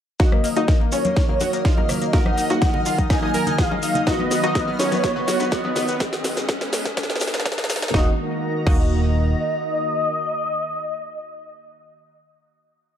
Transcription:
0.19 D#1 D#3 F#3 A#3 D#4 F#4 D#5 F6, kick, snare, closed hi-hat, riser, shekere
0.32 A#3, cross-stick, high conga
0.44 A#3, open hi-hat, shekere
0.56 D#1 A#3 D#4 F#4 D#5, closed hi-hat, shekere
0.68 A#3, kick, snare, closed hi-hat, high conga, shekere
0.81 A#3, high bongo
0.92 A#1 C#4 C#5, open hi-hat, shekere
1.05 A#3, closed hi-hat, high conga, shekere
1.16 A#3, kick, snare, closed hi-hat, shekere
1.29 D#1 A#3, low conga
1.40 F#4, open hi-hat, high bongo, high conga, shekere
1.53 A#3, closed hi-hat, shekere
1.65 F4 D#5, kick, snare, closed hi-hat, shekere
1.77 D#1 A#3, high conga
1.89 A#3, cross-stick, open hi-hat, low conga, shekere
2.02 A#3, closed hi-hat, shekere
2.13 D#2 A#3 D#4 F#4 A#4 D#5 F#5, kick, snare, closed hi-hat, high bongo, shekere
2.26 D#4, cross-stick, high conga
2.37 D#4, open hi-hat, shekere
2.50 D#1 A#3 D#4 F#4 D#5, closed hi-hat, shekere
2.62 D#4, kick, snare, closed hi-hat, high conga, shekere
2.74 D#4, high bongo, low conga
2.86 D#1 F4, open hi-hat, shekere
2.98 D#4, kick, closed hi-hat, high conga, shekere
3.10 D#4 G#5, kick, cross-stick, snare, closed hi-hat, shekere
3.23 D#1 D#4
3.34 A#4, open hi-hat, high conga, shekere
3.47 D#4, closed hi-hat, high bongo, low conga, shekere
3.58 G#4 F5, kick, snare, closed hi-hat, shekere
3.71 C#2 D#4, high conga
3.82 D#4, open hi-hat, shekere
3.95 D#4, closed hi-hat, low conga, shekere
4.07 F#3 B3 D#4 F#4 D#5, kick, snare, closed hi-hat, high bongo, shekere
4.19 B3, high conga
4.31 B3, snare, open hi-hat, shekere
4.43 D#1 B3 D#4 F#4 D#5, closed hi-hat, shekere
4.55 B3, kick, snare, closed hi-hat, high conga, shekere
4.68 B3
4.79 A#1 C#4 C#5, snare, open hi-hat, high bongo, shekere
4.92 B3, closed hi-hat, high conga, shekere
5.03 B3, kick, snare, closed hi-hat, shekere
5.16 B3, low conga
5.28 F#4, snare, open hi-hat, high conga, shekere
5.40 B3, closed hi-hat, high bongo, shekere
5.51 F#4 D#5, kick, snare, closed hi-hat, shekere
5.64 B3, high conga
5.76 B3, snare, open hi-hat, low conga, shekere
5.88 B3, closed hi-hat, shekere
6.00 G#3 B3, kick, snare, closed hi-hat, shekere
6.13 snare
6.24 snare, open hi-hat, shekere
6.37 snare, closed hi-hat, shekere
6.49 kick, snare, closed hi-hat, shekere
6.61 snare
6.73 snare, open hi-hat, shekere
6.85 kick, snare, closed hi-hat, shekere
6.97 kick, snare, closed hi-hat, shekere
7.03 snare
7.10 snare
7.16 snare
7.20 snare, open hi-hat, shekere
7.27 snare
7.34 snare, closed hi-hat, shekere
7.40 snare
7.46 kick, snare, closed hi-hat, shekere
7.52 snare
7.58 snare
7.64 snare
7.69 snare, open hi-hat, shekere
7.76 snare
7.82 snare, closed hi-hat, shekere
7.88 snare
7.94 D#1 D#3 A#3 D#4 F#4 D#5 A#5, kick, snare
8.66 D#1 A#3 D#4 F#4 D#5, kick, crash

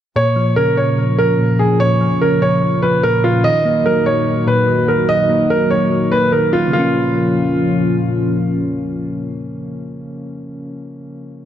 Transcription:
0.16 A#2 F3 C#4 F4 C#5
0.36 F3
0.56 C#3 A#4
0.77 C#5
1.18 F3 A#4
1.39 A#2
1.59 A#2 G#4
1.80 A#2 C#5
2.01 F3
2.21 C#3 A#4
2.42 C#5
2.82 F3 B4
3.03 A#2 A#4
3.24 A#2 F4
3.44 A#2 D#3 F#3 D#4 F#4 D#5
3.65 A#3
3.86 F#3 A#4
4.06 C#5
4.47 A#2 B4
4.68 D#3
4.88 D#3 A#4
5.09 D#3 D#5
5.29 A#3
5.50 F#3 A#4
5.71 C#5
6.12 A#3 B4
6.32 D#3 A#4
6.52 D#3 F4
6.67 C#3
6.71 A#2 F3 A#3 C#4 F4
6.79 C#4

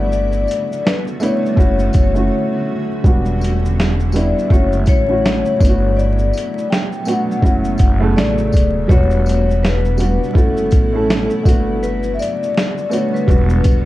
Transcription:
Already playing: G1 D3 G3 A3 B3 D4 F#4 D5
0.12 D5, shaker
0.32 shaker
0.48 closed hi-hat, tambourine, shaker
0.72 shaker
0.85 B4, snare, shaker
1.07 shaker
1.20 A3 B3 D4 E4 C#5, closed hi-hat, tambourine, shaker
1.46 shaker
1.56 F#1 D3 A3 C#4 E4 F#4, kick
1.60 shaker
1.79 shaker
1.93 F#1, kick, closed hi-hat, tambourine, shaker
2.14 A3 C#4 E4 F#4, shaker
3.04 E1 G3 B3 D4 F#4, kick, shaker
3.25 shaker
3.41 closed hi-hat, tambourine, shaker
3.65 shaker
3.80 snare, shaker
4.00 shaker
4.12 G3 B3 D4 E4 D5, closed hi-hat, tambourine, shaker
4.39 shaker
4.49 F#1 A3 C#4 E4 F#4 C#5, kick
4.53 shaker
4.72 shaker
4.86 A1 C#5, kick, closed hi-hat, tambourine, shaker
5.07 A3 C#4 E4 F#4
5.26 snare, shaker
5.45 shaker
5.59 G1 B2 F#3 G3 A3 B3 D4 E4, kick, tambourine
5.65 F#4, closed hi-hat, shaker
5.97 D5, shaker
6.18 shaker
6.33 tambourine
6.37 closed hi-hat, shaker
6.58 shaker
6.70 G5, snare, shaker
6.92 shaker
7.05 A3 B3 D4 F#4 F#5, closed hi-hat, tambourine, shaker
7.31 shaker
7.41 F#1 A3 C#4 E4 F#4, kick
7.46 shaker
7.65 shaker
7.78 F#1, kick, closed hi-hat, tambourine, shaker
8.00 C#3 A3 E4 A4
8.16 A1 D5, snare, shaker
8.38 shaker
8.52 D#1, kick, tambourine
8.57 closed hi-hat, shaker
8.88 E1 G3 B3 D4 E4 F#4 C#5, kick, shaker
9.11 shaker
9.26 closed hi-hat, tambourine, shaker
9.51 shaker
9.63 B4, snare, shaker
9.85 shaker
9.97 G3 B3 D4 F#4, closed hi-hat, tambourine, shaker
10.23 shaker
10.33 F#1 A3 C#4 E4 F#4 A4, kick
10.37 shaker
10.57 shaker
10.71 A1, kick, closed hi-hat, tambourine, shaker
10.93 A3 C#4 E4 A4
11.10 snare, shaker
11.30 shaker
11.43 G1 D3 G3 A3 A#3 B3 D4 F#4, kick, tambourine
11.49 B3, closed hi-hat, shaker
11.83 B4, shaker
12.03 shaker
12.14 E5
12.19 D5, closed hi-hat, tambourine, shaker
12.43 shaker
12.57 snare, shaker
12.78 shaker
12.89 A3 B3 D4 F#4 C#5, tambourine
12.93 closed hi-hat, shaker
13.14 B4, shaker
13.27 E1 G3 B3 D4 F#4, kick, shaker
13.50 shaker
13.64 E1, kick, closed hi-hat, tambourine, shaker

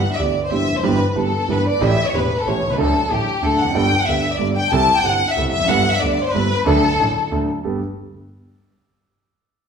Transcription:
Already playing: F#5
0.12 E5
0.19 D2 D3 E3 B3 D4 G4 D5
0.45 C5
0.51 G1 G2 E3 B3 D4 G4 E5
0.68 F1
0.73 E2 F2
0.77 F#2 C5
0.83 G1 G2 E3 G3 B3 G4 B4
1.11 B4
1.15 G1 G2 E3 G3 B3 G4 A4
1.48 G1 G2 E3 G3 B3 G4 B4
1.68 D5
1.81 A1 A2 E3 A3 C#4 G4 E5
2.07 C#5
2.13 E1 E2 E3 A3 C#4 G4 B4
2.39 A4
2.46 A1 A2 E3 A3 C#4 G4 C#5
2.62 C2
2.67 B1 C2
2.71 B4
2.75 C#2 D2 D3 F#3 A3 D4 A4
2.81 A4
3.10 A1 A2 F#3 A3 D4 G4 A4
3.42 D2 D3 F#3 A3 D4 A4
3.58 F1 F#5
3.63 E2
3.67 F2 F#2
3.75 G1 G2 G3 B3 D4 A4 G5
4.01 F#5
4.07 D2 D3 G3 B3 D4 A4 E5
4.34 D5
4.39 G1 G2 G3 B3 D4 A4
4.56 G5
4.71 C2 C3 G3 C4 E4 A4 A5
4.96 G5
5.03 G1 G2 G3 C4 E4 A4 F#5
5.29 E5
5.36 C2 C3 G3 C4 E4 A4
5.52 F1 E5
5.56 E2 F2
5.65 G1 F#2 G3 B3 D4 F#5
5.69 G1 G2 A4
5.92 E5
6.00 D2 D3 G3 B3 D4 A4 D5
6.25 C5
6.33 G1 G2 G3 B3 D4 A4 B4
6.66 D2 D3 F#3 A3 D4 A4
6.99 A1 A2 F#3 A3 D4 A4
7.31 D2 D3 F#3 A3 D4 A4
7.64 G1 G2 B3 G4 A4

